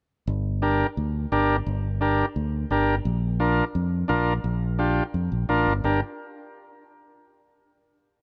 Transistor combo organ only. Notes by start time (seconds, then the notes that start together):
0.62 D4 G4 A#4
1.32 D4 G4 A#4
2.01 D4 G4 A#4
2.71 D4 G4 A#4
3.40 D4 F4 A#4
4.08 D4 F4 A#4
4.79 D4 F4 G4
5.49 D4 F4 A#4
5.85 D4 G4 A#4